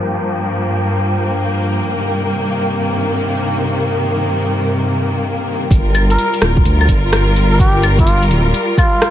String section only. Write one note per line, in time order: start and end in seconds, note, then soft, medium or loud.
0.00 5.67 G2 medium
0.00 1.89 F3 medium
0.00 5.67 A#3 medium
1.93 5.67 C3 medium
1.93 5.67 D#3 medium
5.71 9.10 G3 medium
5.71 9.10 F4 medium
5.71 9.10 A#4 medium